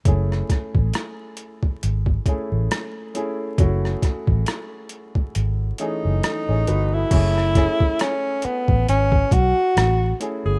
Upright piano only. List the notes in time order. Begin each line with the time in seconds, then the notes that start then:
0.06 A3 C#4 E4 G#4
2.26 A3 C#4 E4 G#4
3.14 A3 C#4 E4 G#4
3.58 A3 C#4 E4 F#4
5.79 E3 A3 C#4 G#4
6.24 A4 D#5
6.49 G#4 C#5
6.68 F#4 B4
6.93 E4 A4
7.12 A3 C#4 E4 G#4
7.55 A3 C#4 E4 G#4
10.20 A3 C#4 E4 G#4